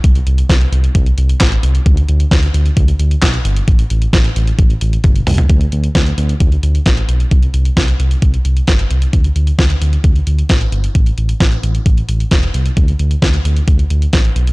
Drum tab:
HH |xxxxxxxxxxxxxxxx|xxxxxxxxxxxxxxxx|xxxxxxxxxxxxxxox|xxxxxxxxxxxxxxxx|
CP |------------x---|------------x---|----------------|----------------|
SD |----o-------o---|----o-------o---|----o-----------|----o-------o---|
T1 |----------------|----------------|------------o---|----------------|
T2 |----------------|----------------|--------------o-|----------------|
FT |----------------|----------------|---------------o|----------------|
BD |o---o---o---o---|o---o---o---o---|o---o---o---o---|o---o---o---o---|

HH |xxxxxxxxxxxxxxxx|xxxxxxxxxxxxxxxx|xxxxxxxxxxxxxxxx|xxxxxxxxxxxxxxxx|
CP |----------------|----------------|----------------|----------------|
SD |----o-------o---|----o-------o---|----o-------o---|----o-------o---|
T1 |----------------|----------------|----------------|----------------|
T2 |----------------|----------------|----------------|----------------|
FT |----------------|----------------|----------------|----------------|
BD |o---o---o---o---|o---o---o---o---|o---o---o---o---|o---o---o---o---|